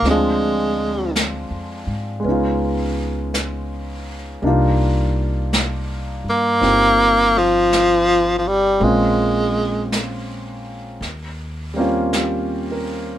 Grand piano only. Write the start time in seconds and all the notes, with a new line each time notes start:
0.05 F3 G#3 C4 D4 F4
2.20 G#3
2.24 B3 C#4
2.28 D#4 F4
4.42 G3 A#3 D4 D#4
4.47 F4
6.61 C4 D#4 F4 G4
8.79 G#3 A#3 C4
8.84 C#4 F4
11.74 G3 A#3 C4
11.78 C#4 F4
12.16 G4
12.72 A#4